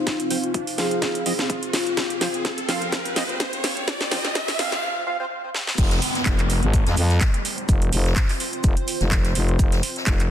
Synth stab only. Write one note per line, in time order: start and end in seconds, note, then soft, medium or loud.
0.31 0.37 F3 medium
0.31 0.37 C4 medium
0.31 0.37 F4 medium
0.31 0.37 C5 medium
0.78 1.23 F3 medium
0.78 1.23 C4 medium
0.78 1.23 F4 medium
0.78 1.23 F5 medium
1.26 1.32 F3 loud
1.26 1.32 C4 medium
1.26 1.32 F4 medium
1.26 1.32 D#5 loud
2.21 2.28 F3 medium
2.21 2.28 C4 medium
2.21 2.28 F4 medium
2.21 2.28 C5 medium
2.69 3.14 F3 medium
2.69 3.14 C4 medium
2.69 3.14 F4 medium
2.69 3.14 F5 loud
3.16 3.23 F3 loud
3.16 3.23 C4 medium
3.16 3.23 F4 medium
3.16 3.23 D#5 loud
4.12 4.18 F3 medium
4.12 4.18 C4 medium
4.12 4.18 F4 medium
4.12 4.18 C5 medium
4.59 5.04 F3 medium
4.59 5.04 C4 medium
4.59 5.04 F4 medium
4.59 5.04 F5 medium
5.07 5.17 F3 medium
5.07 5.17 C4 medium
5.07 5.17 F4 medium
5.07 5.17 F5 loud
5.20 5.25 F3 medium
5.20 5.25 C4 medium
5.20 5.25 F4 medium
5.20 5.25 C5 loud